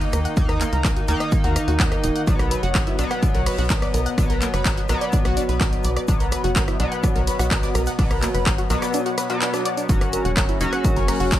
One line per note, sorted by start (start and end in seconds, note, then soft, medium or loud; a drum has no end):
0.00 0.34 D#3 loud
0.00 0.34 A#3 medium
0.00 0.34 D#4 loud
0.00 0.08 D#5 medium
0.00 0.08 D#6 medium
0.00 closed hi-hat soft
0.13 0.28 D#2 medium
0.13 0.20 A#4 medium
0.13 0.20 A#5 medium
0.13 cross-stick medium
0.13 closed hi-hat loud
0.13 shaker medium
0.25 0.29 F#5 loud
0.25 0.29 F#6 medium
0.25 closed hi-hat medium
0.36 0.65 D#2 loud
0.36 1.06 D#3 medium
0.36 1.06 A#3 medium
0.36 0.44 D#4 loud
0.36 1.06 D#4 medium
0.36 0.44 D#5 medium
0.36 kick loud
0.36 closed hi-hat medium
0.36 shaker medium
0.49 0.55 A#4 medium
0.49 0.55 A#5 medium
0.49 cross-stick soft
0.49 snare soft
0.49 closed hi-hat soft
0.61 0.67 A#3 medium
0.61 0.67 A#4 medium
0.61 clap medium
0.61 closed hi-hat loud
0.61 shaker medium
0.73 1.01 C#2 medium
0.73 0.83 A#4 medium
0.73 0.83 A#5 medium
0.73 closed hi-hat soft
0.83 0.91 A#4 medium
0.83 0.91 A#5 medium
0.83 kick loud
0.83 cross-stick soft
0.83 snare loud
0.83 clap loud
0.83 closed hi-hat medium
0.83 shaker medium
0.96 1.00 F#4 medium
0.96 1.00 F#5 medium
0.96 closed hi-hat soft
1.08 1.16 D#2 medium
1.08 2.25 D#3 loud
1.08 2.25 A#3 medium
1.08 2.25 D#4 loud
1.08 1.15 A#4 medium
1.08 1.15 A#5 medium
1.08 closed hi-hat medium
1.08 shaker medium
1.20 1.24 D#5 loud
1.20 1.24 D#6 medium
1.20 cross-stick medium
1.20 closed hi-hat soft
1.31 1.39 D#4 medium
1.31 1.39 D#5 medium
1.31 kick loud
1.31 closed hi-hat medium
1.31 shaker medium
1.44 1.58 D#2 loud
1.44 1.54 F#4 loud
1.44 1.54 F#5 medium
1.44 closed hi-hat soft
1.56 1.63 D#4 medium
1.56 1.63 D#5 medium
1.56 cross-stick medium
1.56 closed hi-hat loud
1.56 shaker medium
1.68 1.96 D#2 medium
1.68 1.75 F#4 medium
1.68 1.75 F#5 medium
1.68 closed hi-hat soft
1.79 1.84 F#4 medium
1.79 1.84 F#5 medium
1.79 kick loud
1.79 snare loud
1.79 clap loud
1.79 closed hi-hat medium
1.79 shaker medium
1.92 1.96 A#4 medium
1.92 1.96 A#5 medium
1.92 cross-stick medium
1.92 closed hi-hat soft
2.04 2.11 D#1 medium
2.04 2.10 D#4 medium
2.04 2.10 D#5 medium
2.04 closed hi-hat loud
2.04 shaker medium
2.16 2.22 F#5 medium
2.16 2.22 F#6 medium
2.16 closed hi-hat soft
2.27 2.56 B1 loud
2.27 2.96 B2 medium
2.27 2.96 F#3 medium
2.27 2.96 B3 medium
2.27 2.34 D4 loud
2.27 2.34 D5 medium
2.27 kick loud
2.27 closed hi-hat medium
2.27 shaker medium
2.39 2.46 A#4 medium
2.39 2.46 A#5 medium
2.39 cross-stick medium
2.39 closed hi-hat soft
2.51 2.61 B4 medium
2.51 2.61 B5 medium
2.51 closed hi-hat loud
2.51 shaker medium
2.63 2.91 F#1 medium
2.63 2.70 F#4 loud
2.63 2.70 F#5 medium
2.63 closed hi-hat soft
2.75 2.82 A#4 medium
2.75 2.82 A#5 medium
2.75 kick loud
2.75 cross-stick medium
2.75 snare loud
2.75 clap loud
2.75 closed hi-hat medium
2.75 shaker medium
2.87 2.97 E4 medium
2.87 2.97 E5 medium
2.87 closed hi-hat soft
2.99 3.06 B1 medium
2.99 4.15 B2 loud
2.99 4.15 F#3 medium
2.99 4.15 B3 loud
2.99 3.05 D4 loud
2.99 3.05 D5 medium
2.99 closed hi-hat medium
2.99 shaker medium
3.11 3.15 F#5 loud
3.11 3.15 F#6 medium
3.11 cross-stick medium
3.11 closed hi-hat soft
3.23 3.29 D4 medium
3.23 3.29 D5 medium
3.23 kick loud
3.23 closed hi-hat medium
3.23 shaker medium
3.35 3.49 B1 loud
3.35 3.41 A#4 medium
3.35 3.41 A#5 medium
3.35 snare soft
3.35 closed hi-hat soft
3.46 3.56 B4 medium
3.46 3.56 B5 medium
3.46 cross-stick medium
3.46 closed hi-hat loud
3.46 open hi-hat medium
3.58 3.86 B1 medium
3.58 3.65 F#4 loud
3.58 3.65 F#5 medium
3.58 closed hi-hat soft
3.70 3.77 A#4 medium
3.70 3.77 A#5 medium
3.70 kick loud
3.70 snare loud
3.70 clap loud
3.70 closed hi-hat medium
3.70 shaker medium
3.82 3.89 D5 medium
3.82 3.89 D6 medium
3.82 cross-stick medium
3.82 closed hi-hat soft
3.94 4.08 B1 medium
3.94 4.01 A#4 medium
3.94 4.01 A#5 medium
3.94 closed hi-hat medium
3.94 shaker medium
4.06 4.10 F#5 loud
4.06 4.10 F#6 medium
4.06 closed hi-hat soft
4.18 4.46 B1 loud
4.18 4.86 B2 medium
4.18 4.86 F#3 medium
4.18 4.87 B3 medium
4.18 4.25 D4 loud
4.18 4.25 D5 medium
4.18 kick loud
4.18 cross-stick medium
4.18 closed hi-hat medium
4.18 shaker medium
4.29 4.36 A#4 medium
4.29 4.36 A#5 medium
4.29 snare soft
4.29 closed hi-hat soft
4.42 4.48 A#3 medium
4.42 4.48 A#4 medium
4.42 clap medium
4.42 closed hi-hat loud
4.42 shaker medium
4.54 4.82 F#1 medium
4.54 4.64 B4 medium
4.54 4.64 B5 medium
4.54 cross-stick medium
4.54 closed hi-hat soft
4.65 4.72 A#4 medium
4.65 4.72 A#5 medium
4.65 kick loud
4.65 snare loud
4.65 clap loud
4.65 closed hi-hat medium
4.65 shaker medium
4.77 4.81 F#4 medium
4.77 4.81 F#5 medium
4.77 closed hi-hat soft
4.89 4.97 B1 medium
4.89 6.06 B2 loud
4.89 6.06 F#3 medium
4.89 6.06 B3 loud
4.89 4.96 A#4 medium
4.89 4.96 A#5 medium
4.89 cross-stick medium
4.89 closed hi-hat medium
4.89 shaker medium
5.01 5.05 D5 loud
5.01 5.05 D6 medium
5.01 closed hi-hat soft
5.12 5.20 D4 medium
5.12 5.20 D5 medium
5.12 kick loud
5.12 closed hi-hat medium
5.12 shaker medium
5.25 5.39 B1 medium
5.25 5.35 F#4 loud
5.25 5.35 F#5 medium
5.25 cross-stick medium
5.25 closed hi-hat soft
5.37 5.44 D4 loud
5.37 5.44 D5 medium
5.37 closed hi-hat loud
5.37 shaker medium
5.49 5.77 B1 medium
5.49 5.59 B4 medium
5.49 5.59 B5 medium
5.49 closed hi-hat soft
5.60 5.67 A#4 medium
5.60 5.67 A#5 medium
5.60 kick loud
5.60 cross-stick medium
5.60 snare loud
5.60 clap loud
5.60 closed hi-hat medium
5.60 shaker medium
5.73 closed hi-hat soft
5.84 5.99 B1 medium
5.84 5.91 D5 medium
5.84 5.91 D6 medium
5.84 closed hi-hat medium
5.84 shaker medium
5.97 6.00 D5 loud
5.97 6.00 D6 medium
5.97 cross-stick medium
5.97 closed hi-hat medium
6.08 6.36 B1 loud
6.08 6.77 B2 medium
6.08 6.77 F#3 medium
6.08 6.77 B3 medium
6.08 6.15 D4 loud
6.08 6.15 D5 medium
6.08 kick loud
6.08 closed hi-hat medium
6.08 shaker loud
6.20 6.27 A#4 medium
6.20 6.27 A#5 medium
6.20 closed hi-hat soft
6.32 6.42 B4 medium
6.32 6.42 B5 medium
6.32 cross-stick medium
6.32 closed hi-hat loud
6.32 shaker medium
6.44 6.72 F#1 medium
6.44 6.51 F#4 loud
6.44 6.51 F#5 medium
6.44 closed hi-hat soft
6.56 6.63 A#4 medium
6.56 6.63 A#5 medium
6.56 kick loud
6.56 snare loud
6.56 clap loud
6.56 closed hi-hat medium
6.56 shaker medium
6.68 6.78 E4 medium
6.68 6.78 E5 medium
6.68 cross-stick medium
6.68 closed hi-hat soft
6.80 6.87 B1 medium
6.80 7.96 B2 loud
6.80 7.96 F#3 medium
6.80 7.96 B3 loud
6.80 6.86 D4 loud
6.80 6.86 D5 medium
6.80 closed hi-hat medium
6.92 6.96 F#5 loud
6.92 6.96 F#6 medium
6.92 closed hi-hat soft
7.04 7.10 D4 medium
7.04 7.10 D5 medium
7.04 kick loud
7.04 cross-stick medium
7.04 closed hi-hat medium
7.04 shaker medium
7.15 7.30 B1 medium
7.15 7.22 A#4 medium
7.15 7.22 A#5 medium
7.15 snare soft
7.15 closed hi-hat soft
7.27 7.37 B4 medium
7.27 7.37 B5 medium
7.27 snare loud
7.27 closed hi-hat loud
7.27 shaker medium
7.39 7.67 B1 medium
7.39 7.46 F#4 loud
7.39 7.46 F#5 medium
7.39 cross-stick medium
7.39 snare loud
7.39 closed hi-hat soft
7.39 shaker medium
7.51 7.58 A#4 medium
7.51 7.58 A#5 medium
7.51 kick loud
7.51 snare loud
7.51 clap loud
7.51 closed hi-hat medium
7.51 shaker medium
7.63 7.70 D5 medium
7.63 7.70 D6 medium
7.63 snare loud
7.63 closed hi-hat soft
7.63 shaker medium
7.74 7.89 B1 medium
7.74 7.82 A#4 medium
7.74 7.82 A#5 medium
7.74 cross-stick medium
7.74 snare loud
7.74 closed hi-hat medium
7.74 shaker medium
7.86 7.91 F#5 loud
7.86 7.91 F#6 medium
7.86 snare loud
7.86 closed hi-hat medium
7.86 shaker medium
7.99 8.27 B1 loud
7.99 8.67 B2 medium
7.99 8.67 F#3 medium
7.99 8.67 B3 medium
7.99 8.05 D4 loud
7.99 8.05 D5 medium
7.99 kick loud
7.99 closed hi-hat medium
7.99 open hi-hat medium
8.11 8.17 A#4 medium
8.11 8.17 A#5 medium
8.11 cross-stick medium
8.11 closed hi-hat soft
8.23 8.29 A#3 medium
8.23 8.29 A#4 medium
8.23 clap medium
8.23 closed hi-hat loud
8.23 shaker medium
8.34 8.63 F#1 medium
8.34 8.44 B4 medium
8.34 8.44 B5 medium
8.34 closed hi-hat soft
8.46 8.53 A#4 medium
8.46 8.53 A#5 medium
8.46 kick loud
8.46 cross-stick medium
8.46 snare loud
8.46 clap loud
8.46 closed hi-hat medium
8.46 shaker medium
8.58 8.62 F#4 medium
8.58 8.62 F#5 medium
8.58 closed hi-hat soft
8.70 8.77 B1 medium
8.70 9.27 B2 loud
8.70 9.27 F#3 medium
8.70 9.27 B3 loud
8.70 8.77 A#4 medium
8.70 8.77 A#5 medium
8.70 snare loud
8.70 closed hi-hat medium
8.70 shaker medium
8.82 8.86 D5 loud
8.82 8.86 D6 medium
8.82 cross-stick medium
8.82 snare loud
8.82 closed hi-hat soft
8.82 shaker medium
8.93 9.01 D4 medium
8.93 9.01 D5 medium
8.93 closed hi-hat medium
8.93 shaker medium
9.06 9.16 F#4 loud
9.06 9.16 F#5 medium
9.06 closed hi-hat soft
9.18 9.28 B4 medium
9.18 9.28 B5 medium
9.18 cross-stick medium
9.18 snare loud
9.18 closed hi-hat loud
9.18 shaker medium
9.30 9.86 B2 loud
9.30 9.86 F#3 medium
9.30 9.86 B3 loud
9.30 9.36 F#4 medium
9.30 9.36 F#5 medium
9.30 closed hi-hat soft
9.42 9.48 D4 medium
9.42 9.48 D5 medium
9.42 clap loud
9.42 closed hi-hat medium
9.42 shaker medium
9.54 9.63 D4 medium
9.54 9.63 D5 medium
9.54 cross-stick medium
9.54 snare loud
9.54 closed hi-hat soft
9.54 shaker medium
9.65 9.69 D5 loud
9.65 9.69 D6 medium
9.65 closed hi-hat medium
9.77 9.87 D4 medium
9.77 9.87 D5 medium
9.77 closed hi-hat medium
9.77 shaker medium
9.89 10.17 F#1 loud
9.89 10.58 F#3 medium
9.89 10.58 C#4 medium
9.89 9.96 D#4 loud
9.89 11.39 F#4 medium
9.89 10.58 F#4 medium
9.89 11.39 A#4 medium
9.89 11.39 C#5 medium
9.89 9.96 D#5 medium
9.89 11.39 G#5 loud
9.89 kick loud
9.89 closed hi-hat medium
9.89 shaker medium
10.01 10.08 A#4 medium
10.01 10.08 A#5 medium
10.01 cross-stick medium
10.01 closed hi-hat soft
10.13 10.23 A#4 medium
10.13 10.23 A#5 medium
10.13 closed hi-hat loud
10.13 shaker medium
10.25 10.53 E1 loud
10.25 10.32 F#4 loud
10.25 10.32 F#5 medium
10.25 closed hi-hat soft
10.37 10.44 A#4 medium
10.37 10.44 A#5 medium
10.37 kick loud
10.37 cross-stick medium
10.37 snare loud
10.37 clap loud
10.37 closed hi-hat medium
10.37 shaker medium
10.49 10.59 E4 medium
10.49 10.59 E5 medium
10.49 closed hi-hat soft
10.61 10.68 F#1 medium
10.61 11.39 F#3 loud
10.61 11.39 C#4 medium
10.61 10.67 D#4 loud
10.61 11.39 F#4 loud
10.61 10.67 D#5 medium
10.61 closed hi-hat medium
10.61 shaker medium
10.73 10.77 F#5 loud
10.73 10.77 F#6 medium
10.73 cross-stick medium
10.73 closed hi-hat soft
10.84 10.91 D#4 medium
10.84 10.91 D#5 medium
10.84 kick loud
10.84 closed hi-hat medium
10.84 shaker medium
10.96 11.11 F#1 loud
10.96 11.03 A#4 medium
10.96 11.03 A#5 medium
10.96 snare soft
10.96 closed hi-hat soft
11.08 11.18 A#4 medium
11.08 11.18 A#5 medium
11.08 cross-stick medium
11.08 closed hi-hat loud
11.08 open hi-hat medium
11.20 11.39 F#1 medium
11.20 11.27 F#4 loud
11.20 11.27 F#5 medium
11.20 closed hi-hat soft
11.32 11.39 A#4 medium
11.32 11.39 A#5 medium
11.32 kick loud
11.32 snare loud
11.32 clap loud
11.32 closed hi-hat medium
11.32 shaker medium